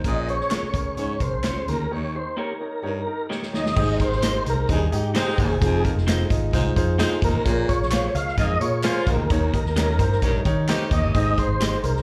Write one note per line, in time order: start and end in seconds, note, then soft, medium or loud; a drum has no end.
0.04 0.40 A#1 loud
0.04 0.37 A#2 medium
0.04 0.71 A#2 medium
0.04 0.23 C#4 medium
0.04 0.23 G#4 medium
0.04 0.23 A#4 medium
0.04 0.20 D#5 loud
0.04 kick medium
0.04 closed hi-hat loud
0.21 0.28 D#5 medium
0.28 0.46 C#4 medium
0.28 0.46 G#4 medium
0.28 0.46 C5 medium
0.28 0.95 C#5 loud
0.28 closed hi-hat medium
0.40 snare soft
0.50 0.65 C#4 medium
0.50 0.69 C#4 medium
0.50 0.65 F4 medium
0.50 0.69 G#4 medium
0.50 0.65 G#4 medium
0.50 0.69 A#4 medium
0.50 0.66 C#5 medium
0.50 snare loud
0.50 clap medium
0.50 closed hi-hat medium
0.50 tambourine loud
0.63 muted fingered electric bass stroke soft
0.74 1.01 C#2 medium
0.74 0.92 C#4 medium
0.74 0.93 G#4 medium
0.74 0.92 A#4 medium
0.74 kick medium
0.74 closed hi-hat medium
0.74 tambourine medium
0.97 1.16 G#2 medium
0.97 1.16 C#4 medium
0.97 1.16 G#4 medium
0.97 1.16 C#5 medium
0.97 1.22 C#5 loud
0.97 closed hi-hat medium
0.97 tambourine soft
1.20 1.29 C2 medium
1.20 1.39 C#4 medium
1.20 1.39 G#4 medium
1.20 1.39 A#4 medium
1.20 1.69 C5 medium
1.20 kick medium
1.20 closed hi-hat medium
1.20 tambourine medium
1.33 1.42 A#1 medium
1.44 1.62 C#2 medium
1.44 1.58 C#4 medium
1.44 1.62 C#4 medium
1.44 1.58 F4 medium
1.44 1.62 G#4 medium
1.44 1.59 G#4 medium
1.44 1.62 C5 medium
1.44 1.59 C#5 medium
1.44 snare loud
1.44 clap medium
1.44 closed hi-hat medium
1.44 tambourine medium
1.67 1.86 D2 medium
1.67 1.86 D#2 medium
1.67 1.86 C#4 medium
1.67 1.86 G#4 medium
1.67 1.86 A#4 medium
1.67 1.92 A#4 medium
1.67 closed hi-hat medium
1.67 tambourine soft
1.91 2.24 D#2 medium
1.91 2.57 D#3 medium
1.91 2.09 D#4 medium
1.91 2.09 G4 medium
1.91 2.09 C#5 medium
1.91 2.14 C#5 medium
2.15 2.33 D#4 medium
2.15 2.33 G4 medium
2.15 2.33 C5 medium
2.15 2.37 C5 medium
2.37 2.51 A#3 medium
2.37 2.52 D#4 medium
2.37 2.56 D#4 medium
2.37 2.52 G4 medium
2.37 2.56 G4 medium
2.37 3.27 A#4 medium
2.37 2.56 C#5 medium
2.37 2.52 C#5 medium
2.60 2.79 D#4 medium
2.60 2.79 G4 medium
2.60 2.79 C#5 medium
2.83 3.02 G2 medium
2.83 3.02 D#4 medium
2.83 3.01 G4 medium
2.83 3.02 C#5 medium
3.07 3.25 D#4 medium
3.07 3.25 G4 medium
3.07 3.25 A#4 medium
3.30 3.44 A#3 medium
3.30 3.48 D#4 medium
3.30 3.44 D#4 medium
3.30 3.48 G4 medium
3.30 3.44 G4 medium
3.30 3.48 C#5 medium
3.30 3.45 C#5 medium
3.30 snare medium
3.42 snare medium
3.53 3.72 D#2 medium
3.53 3.71 D#4 medium
3.53 3.71 G4 medium
3.53 3.71 C#5 medium
3.53 3.98 D#5 loud
3.53 snare medium
3.66 snare medium
3.76 3.94 G#1 loud
3.76 4.42 G#2 medium
3.76 4.10 G#2 medium
3.76 3.94 D#4 medium
3.76 3.94 G4 medium
3.76 3.94 G#4 medium
3.76 3.94 C5 medium
3.76 kick loud
3.76 crash loud
4.00 4.18 D#4 medium
4.00 4.18 G4 medium
4.00 4.18 G#4 medium
4.00 4.18 A#4 medium
4.00 4.44 C5 loud
4.00 kick medium
4.00 closed hi-hat medium
4.12 4.38 G#1 medium
4.12 snare soft
4.22 4.37 D#4 medium
4.22 4.41 D#4 medium
4.22 4.37 G4 medium
4.22 4.41 G4 medium
4.22 4.41 G#4 medium
4.22 4.41 A#4 medium
4.22 4.37 C5 loud
4.22 4.37 D#5 medium
4.22 snare loud
4.22 clap loud
4.22 closed hi-hat loud
4.22 tambourine loud
4.45 4.64 C2 medium
4.45 4.64 D#4 medium
4.45 4.64 G4 medium
4.45 4.64 G#4 medium
4.45 4.64 C5 medium
4.45 closed hi-hat medium
4.45 tambourine medium
4.50 4.69 A#4 medium
4.68 4.87 D#2 loud
4.68 4.88 G2 loud
4.68 4.79 G#3 medium
4.68 4.79 C4 medium
4.68 4.79 D#4 medium
4.68 4.87 D#4 medium
4.68 4.87 G4 medium
4.68 4.87 G#4 medium
4.68 4.95 G#4 medium
4.68 4.87 D#5 medium
4.68 kick loud
4.68 closed hi-hat medium
4.68 tambourine soft
4.92 5.19 G#2 loud
4.92 5.10 D#4 medium
4.92 5.10 G4 medium
4.92 5.15 G4 medium
4.92 5.10 G#4 medium
4.92 5.10 D#5 medium
4.92 closed hi-hat medium
4.92 tambourine medium
5.14 5.59 G#3 loud
5.14 5.59 C4 loud
5.14 5.29 D#4 medium
5.14 5.59 D#4 loud
5.14 5.33 D#4 loud
5.14 5.33 G4 medium
5.14 5.29 G4 medium
5.14 5.33 G#4 medium
5.14 5.33 C5 loud
5.14 5.30 C5 loud
5.14 5.30 D#5 loud
5.14 snare loud
5.14 clap medium
5.14 closed hi-hat medium
5.14 tambourine loud
5.20 5.41 G4 medium
5.38 5.47 G#1 medium
5.38 5.57 D#2 medium
5.38 5.56 D#4 medium
5.38 5.56 G4 medium
5.38 5.56 G#4 medium
5.38 5.56 C5 medium
5.38 kick loud
5.38 open hi-hat medium
5.38 tambourine soft
5.42 5.83 G#4 medium
5.51 5.59 E1 medium
5.61 5.79 F1 loud
5.61 5.95 F2 medium
5.61 5.79 D#4 medium
5.61 5.80 F4 medium
5.61 5.79 G#4 medium
5.61 5.80 C5 loud
5.61 kick loud
5.61 closed hi-hat loud
5.61 tambourine soft
5.84 6.02 D#4 medium
5.84 6.02 F4 medium
5.84 6.02 G#4 medium
5.84 6.03 A#4 medium
5.84 kick medium
5.84 closed hi-hat medium
5.84 tambourine soft
5.96 6.23 F1 loud
5.96 snare soft
6.07 6.21 C4 medium
6.07 6.26 D#4 medium
6.07 6.22 F4 medium
6.07 6.26 F4 medium
6.07 6.26 G#4 medium
6.07 6.22 G#4 medium
6.07 6.26 C5 medium
6.07 6.22 D#5 loud
6.07 snare loud
6.07 clap loud
6.07 closed hi-hat medium
6.07 tambourine loud
6.30 6.48 G#1 loud
6.30 6.49 D#4 medium
6.30 6.49 F4 medium
6.30 6.49 G#4 medium
6.30 6.49 D#5 loud
6.30 kick loud
6.30 closed hi-hat medium
6.30 tambourine medium
6.53 6.71 C2 loud
6.53 6.72 G#2 loud
6.53 6.63 G#3 medium
6.53 6.63 C4 medium
6.53 6.63 D#4 medium
6.53 6.71 D#4 loud
6.53 6.71 F4 medium
6.53 6.72 G#4 medium
6.53 6.72 C5 loud
6.53 kick medium
6.53 closed hi-hat medium
6.53 tambourine medium
6.76 7.03 F2 medium
6.76 6.95 D#4 loud
6.76 6.95 F4 loud
6.76 6.95 G#4 loud
6.76 6.95 C5 loud
6.76 kick medium
6.76 closed hi-hat medium
6.76 tambourine medium
6.98 7.43 G#3 loud
6.98 7.13 C4 medium
6.98 7.43 C4 medium
6.98 7.43 D#4 loud
6.98 7.18 D#4 loud
6.98 7.14 F4 medium
6.98 7.18 F4 loud
6.98 7.18 G#4 loud
6.98 7.14 G#4 medium
6.98 7.18 C5 loud
6.98 7.14 D#5 medium
6.98 snare loud
6.98 clap loud
6.98 closed hi-hat medium
6.98 tambourine medium
7.21 7.31 F1 loud
7.21 7.41 D#2 medium
7.21 7.40 D#4 medium
7.21 7.41 F4 medium
7.21 7.41 G#4 medium
7.21 7.67 A#4 medium
7.21 7.41 D#5 medium
7.21 kick medium
7.21 closed hi-hat medium
7.21 tambourine soft
7.34 7.43 A1 medium
7.44 7.63 A#1 medium
7.44 8.11 A#2 medium
7.44 7.78 A#2 medium
7.44 7.63 F4 medium
7.44 7.64 G#4 medium
7.44 7.64 A#4 medium
7.44 7.63 C#5 loud
7.44 kick loud
7.44 closed hi-hat loud
7.44 tambourine soft
7.68 7.87 F4 medium
7.68 7.87 G#4 medium
7.68 7.87 A#4 medium
7.68 7.87 C#5 medium
7.68 8.17 C#5 loud
7.68 kick medium
7.68 closed hi-hat medium
7.68 tambourine soft
7.80 8.07 A#1 medium
7.80 snare soft
7.91 8.06 F4 medium
7.91 8.10 F4 medium
7.91 8.06 G#4 medium
7.91 8.10 G#4 medium
7.91 8.10 A#4 medium
7.91 8.10 C5 medium
7.91 8.06 C#5 medium
7.91 8.07 F5 loud
7.91 snare loud
7.91 clap loud
7.91 closed hi-hat medium
7.91 tambourine loud
8.14 8.39 C#2 loud
8.14 8.33 F4 medium
8.14 8.33 G#4 medium
8.14 8.33 A#4 medium
8.14 8.33 D#5 medium
8.14 8.37 F5 loud
8.14 closed hi-hat loud
8.14 tambourine medium
8.28 snare soft
8.37 8.55 F2 loud
8.37 8.56 G#2 medium
8.37 8.48 A#3 medium
8.37 8.48 C#4 medium
8.37 8.56 F4 medium
8.37 8.48 F4 medium
8.37 8.56 G#4 medium
8.37 8.56 A#4 medium
8.37 8.56 D#5 medium
8.37 8.60 D#5 loud
8.37 kick loud
8.37 closed hi-hat medium
8.37 tambourine medium
8.60 8.87 A#2 medium
8.60 8.79 F4 medium
8.60 8.80 G#4 medium
8.60 8.79 A#4 medium
8.60 8.83 C#5 medium
8.60 8.80 C#5 loud
8.60 closed hi-hat medium
8.60 tambourine medium
8.83 9.28 A#3 loud
8.83 9.28 C#4 loud
8.83 9.28 F4 loud
8.83 8.98 F4 medium
8.83 9.03 F4 loud
8.83 8.99 G#4 medium
8.83 9.03 G#4 loud
8.83 9.03 A#4 medium
8.83 9.08 C5 medium
8.83 9.03 C5 loud
8.83 8.99 C#5 medium
8.83 8.99 F5 medium
8.83 snare loud
8.83 clap medium
8.83 closed hi-hat medium
8.83 tambourine medium
9.07 9.16 A#1 loud
9.07 9.26 D#2 medium
9.07 9.25 F4 medium
9.07 9.26 G#4 medium
9.07 9.26 A#4 medium
9.07 10.43 A#4 medium
9.07 9.26 D#5 medium
9.07 kick loud
9.07 closed hi-hat medium
9.07 tambourine soft
9.18 9.28 D2 medium
9.30 9.48 D#2 loud
9.30 9.63 D#2 medium
9.30 9.96 D#3 medium
9.30 9.49 D#4 medium
9.30 9.49 G4 medium
9.30 9.49 A#4 medium
9.30 9.49 C#5 loud
9.30 kick loud
9.30 closed hi-hat loud
9.30 tambourine soft
9.54 9.72 D#4 medium
9.54 9.72 G4 medium
9.54 9.72 A#4 medium
9.54 9.72 D#5 medium
9.54 kick medium
9.54 closed hi-hat medium
9.65 9.99 D#2 medium
9.65 snare soft
9.76 9.90 C#4 medium
9.76 9.95 D#4 medium
9.76 9.91 G4 medium
9.76 9.95 G4 medium
9.76 9.91 A#4 medium
9.76 9.95 A#4 medium
9.76 9.95 C#5 loud
9.76 9.91 D#5 loud
9.76 snare loud
9.76 clap loud
9.76 closed hi-hat medium
9.76 tambourine loud
9.99 10.17 G2 loud
9.99 10.18 D#4 medium
9.99 10.18 G4 medium
9.99 10.18 A#4 medium
9.99 10.18 C5 loud
9.99 kick loud
9.99 closed hi-hat medium
9.99 tambourine medium
10.12 snare soft
10.22 10.40 A#1 loud
10.22 10.41 G2 medium
10.22 10.32 C#4 medium
10.22 10.32 D#4 medium
10.22 10.41 D#4 medium
10.22 10.32 G4 medium
10.22 10.41 G4 medium
10.22 10.41 A#4 medium
10.22 10.41 C#5 loud
10.22 kick medium
10.22 closed hi-hat medium
10.22 tambourine medium
10.45 10.72 D#3 medium
10.45 10.64 D#4 loud
10.45 10.64 G4 loud
10.45 10.64 A#4 medium
10.45 10.64 C#5 loud
10.45 kick loud
10.45 closed hi-hat medium
10.45 tambourine medium
10.68 10.83 C#4 medium
10.68 11.13 C#4 loud
10.68 11.13 D#4 loud
10.68 10.87 D#4 loud
10.68 10.87 G4 loud
10.68 11.13 G4 loud
10.68 10.83 G4 medium
10.68 10.87 A#4 loud
10.68 10.84 A#4 medium
10.68 10.87 C5 loud
10.68 10.84 D#5 medium
10.68 snare loud
10.68 clap medium
10.68 closed hi-hat loud
10.68 tambourine medium
10.91 11.00 D#2 medium
10.91 11.10 D#2 medium
10.91 11.10 D#4 medium
10.91 11.10 G4 medium
10.91 11.10 A#4 medium
10.91 11.10 D#5 medium
10.91 11.40 D#5 loud
10.91 kick loud
10.91 closed hi-hat medium
10.91 tambourine medium
11.03 11.12 G1 loud
11.15 11.32 G#1 loud
11.15 11.80 G#2 medium
11.15 11.47 G#2 medium
11.15 11.33 D#4 medium
11.15 11.33 G4 medium
11.15 11.33 G#4 medium
11.15 11.33 C5 loud
11.15 kick loud
11.15 closed hi-hat loud
11.38 11.56 D#4 medium
11.38 11.56 G4 medium
11.38 11.56 G#4 medium
11.38 11.56 C5 medium
11.38 11.86 C5 loud
11.38 kick medium
11.38 closed hi-hat medium
11.38 tambourine soft
11.48 11.75 G#1 medium
11.60 11.79 D#4 medium
11.60 11.75 D#4 medium
11.60 11.79 G4 medium
11.60 11.75 G4 medium
11.60 11.79 G#4 medium
11.60 11.79 C5 medium
11.60 11.75 C5 medium
11.60 11.76 D#5 medium
11.60 snare loud
11.60 clap loud
11.60 closed hi-hat medium
11.60 tambourine loud
11.83 12.02 C2 medium
11.83 12.01 D#4 medium
11.83 12.01 G4 medium
11.83 12.02 G#4 medium
11.83 12.02 A#4 loud
11.83 12.02 C5 medium
11.83 closed hi-hat medium
11.83 tambourine medium
11.96 snare soft